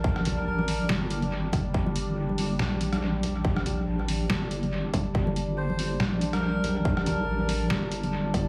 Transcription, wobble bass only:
X:1
M:4/4
L:1/8
Q:"Swing 16ths" 1/4=141
K:Gm
V:1 name="Wobble bass" clef=bass
B,,,2 A,,,2 G,,,4 | G,,,4 B,,,4- | B,,,2 A,,,2 G,,,4 | G,,,4 B,,,4- |
B,,,2 A,,,2 G,,,4 |]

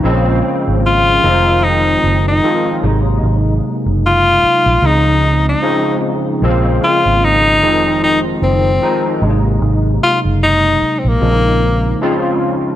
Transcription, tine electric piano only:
X:1
M:4/4
L:1/8
Q:"Swing 16ths" 1/4=75
K:Bbm
V:1 name="Tine electric piano" clef=bass
[D,F,A,B,C]3 [E,F,A,CE]2 z [E,F,A,CF] [C,G,A,B,E]- | [C,G,A,B,E]2 z2 [D,=E,F,A,C_E]2 [D,F,A,CE] z | [C,D,F,A,B,C]3 [E,F,A,CE]2 z [E,F,A,CE] [C,G,A,B,=DE]- | [C,G,A,B,=DE]2 z2 [_D,F,A,C=DE]2 [_D,F,A,CF] z |]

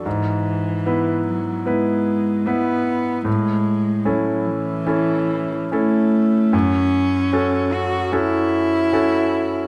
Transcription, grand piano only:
X:1
M:4/4
L:1/8
Q:1/4=75
K:F#m
V:1 name="Grand piano"
G,,2 [B,EB]2 [B,EB]2 [B,EB]2 | A,,2 [CEA]2 [CEA]2 [CEA]2 | F,,2 [CFA]2 [CFA]2 [CFA]2 |]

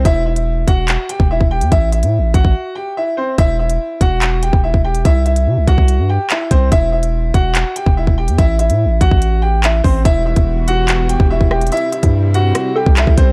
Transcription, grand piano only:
X:1
M:4/4
L:1/8
Q:1/4=144
K:Em
V:1 name="Grand piano"
[Ee] [Ee]2 [Ff]2 [Gg] [Ee] [Gg] | [Ee] [Ee]2 [Ff]2 [Gg] [Ee] [Cc] | [Ee] [Ee]2 [Ff]2 [Gg] [Ee] [Gg] | [Ee] [Ee]2 [Ff]2 [Gg] [Ee] [Cc] |
[Ee] [Ee]2 [Ff]2 [Gg] [Ee] [Gg] | [Ee] [Ee]2 [Ff]2 [Gg] [Ee] [Cc] | [Ee] [Ee]2 [Ff]2 [Gg] [Ee] [Gg] | [Ee] [Ee]2 [Ff]2 [Gg] [Ee] [Cc] |]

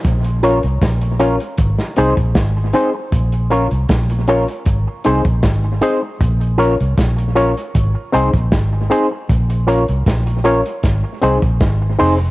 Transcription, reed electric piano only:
X:1
M:4/4
L:1/8
Q:1/4=78
K:Bbm
V:1 name="Reed electric piano"
z [DFBd] z [DFBd] z [CEAc] z [CEAc] | z [DFBd] z [DFBd] z [CEAc] z [CEAc] | z [DFBd] z [DFBd] z [CEAc] z [CEAc] | z [DFBd] z [DFBd] z [CEAc] z [CEAc] |]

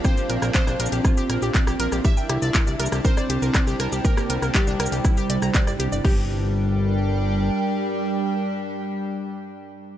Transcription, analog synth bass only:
X:1
M:4/4
L:1/16
Q:1/4=120
K:Gm
V:1 name="Analog synth bass" clef=bass
z2 B,,, B,,, z B,,, B,,, B,,, z2 B,,, B,,, z B,,, B,,, B,,, | z2 C,, C,, z C,, C,, C,, z2 C,, C,, z C,, C,, C,, | z2 C,, C,, z C,, C,, C,, z2 C,, C,, z G,,, C,, G,,, | G,,,12 z4 |
z16 |]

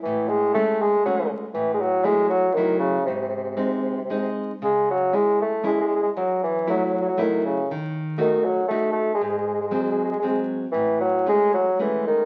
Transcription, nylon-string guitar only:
X:1
M:3/4
L:1/8
Q:1/4=118
K:G#phr
V:1 name="Nylon-string guitar"
A,,2 [G,A,C]2 [G,A,C]2 | A,,2 [F,A,E]2 [F,A,E]2 | G,,2 [G,^B,D]2 [G,B,D]2 | C,2 [G,CE]2 [G,CE]2 |
F,,2 [F,A,E]2 [F,A,E]2 | D,2 [A,DF]2 [A,DF]2 | G,,2 [F,G,^B,]2 [F,G,B,]2 | A,,2 [G,A,C]2 [G,A,C]2 |]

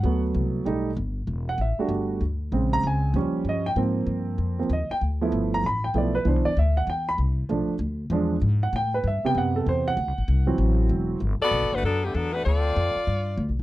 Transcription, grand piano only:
X:1
M:4/4
L:1/8
Q:"Swing" 1/4=193
K:G
V:1 name="Grand piano"
f z6 z | z f e2 z4 | z _b _a2 z2 _e g | z6 _e g |
z3 _b =b g d B | c d e f g b z2 | z6 z f | g B e g f A c f- |
f4 z4 | z8 | z8 |]
V:2 name="Grand piano"
[F,A,B,]4 [G,A,^D] z3 | z3 [G,A,DF]3 z2 | [_D,_A,C]4 [=F,G,_D]3 z | [=F,_B,C]4- [F,B,C] [F,B,C] z2 |
z [=F,A,B,E]3 z2 [F,A,B,E] z | [E,B,D] z6 z | [=F,A,D] z3 [F,^G,D] z3 | z3 [C,B,G]4- [C,B,G] |
z3 [E,F,C]4- [E,F,C] | z8 | z8 |]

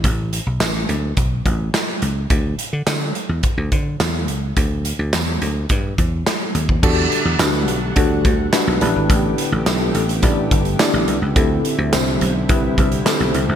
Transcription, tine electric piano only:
X:1
M:4/4
L:1/8
Q:1/4=106
K:Dmix
V:1 name="Tine electric piano"
z8 | z8 | z8 | [DFGA] z [DFGB] z [DFGA] z [DFGB] [DEGB]- |
[DEGB] z [DEGA] z [DEGd] z [DEGd] z | [CEGA] z [CEGc] z [CEGB] z [CEGA] z |]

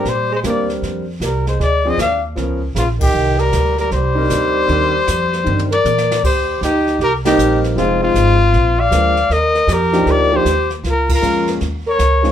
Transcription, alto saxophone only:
X:1
M:4/4
L:1/8
Q:"Swing" 1/4=156
K:Cm
V:1 name="Alto saxophone"
G, A, B, z3 G, A, | A, C D z3 _D, E,- | E, G,2 G, G,4- | G,4- G, B3 |
G2 E2 G E2 z | C C4 d3 | B2 G2 B G2 z | F F3 z B3 |]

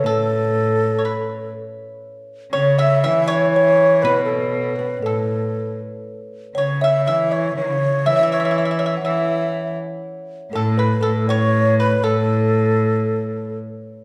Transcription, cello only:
X:1
M:2/4
L:1/16
Q:1/4=60
K:none
V:1 name="Cello" clef=bass
A,,6 z2 | z2 ^C,2 E,4 | B,,4 A,,3 z | z2 ^C,2 E,2 C,2 |
E,4 E,3 z | z2 A,,2 A,,4 | A,,6 z2 |]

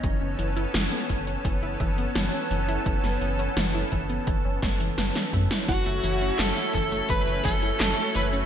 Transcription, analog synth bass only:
X:1
M:4/4
L:1/16
Q:1/4=85
K:F#m
V:1 name="Analog synth bass" clef=bass
F,,, F,,, F,,,2 F,,, z F,,,2 F,,, F,,, F,,,2 F,,, z F,,,2 | F,,, F,,, F,,,2 F,,,2 F,,,2 F,,, F,,, F,,,2 F,,, z F,, z | F,,, F,,, F,,,2 F,,, z F,,,2 F,,, F,,, F,,,2 F,,, z F,,,2 |]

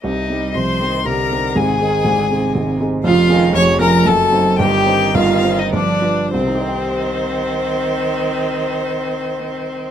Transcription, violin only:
X:1
M:3/4
L:1/16
Q:1/4=111
K:Cm
V:1 name="Violin"
e4 c'4 b4 | a8- a2 z2 | f4 _d'2 b2 =a4 | g4 f3 e d4 |
c12- | c12 |]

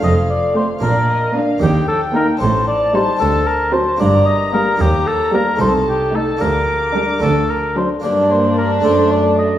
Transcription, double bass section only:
X:1
M:6/8
L:1/8
Q:3/8=75
K:Gm
V:1 name="Double bass section" clef=bass
F,,,3 B,,,3 | E,,3 A,,,3 | D,,3 G,,,3 | E,,3 C,,3 |
D,,3 D,,3 | z6 |]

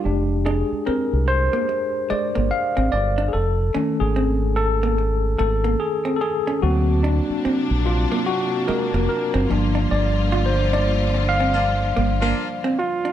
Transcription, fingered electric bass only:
X:1
M:4/4
L:1/16
Q:"Swing 16ths" 1/4=73
K:Fdor
V:1 name="Fingered electric bass" clef=bass
F,,,3 z2 C,,2 z4 G,,, z A,,, G,,,2 | F,,,2 z ^G,,,6- G,,, G,,,2 z4 | D,,3 z2 ^A,,,2 z4 ^E,,, z ^F,,, G,,,2 | G,,,8- G,,,2 G,,,2 z4 |]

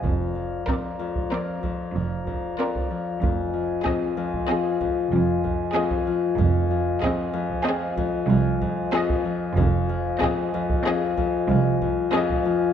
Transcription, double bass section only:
X:1
M:5/4
L:1/8
Q:1/4=94
K:Fdor
V:1 name="Double bass section" clef=bass
F,,,2 z4 F,,,2 z2 | F,,,2 z4 F,,,2 z2 | F,,,2 z4 C,,2 z2 | F,,,2 z4 C,,2 z2 |]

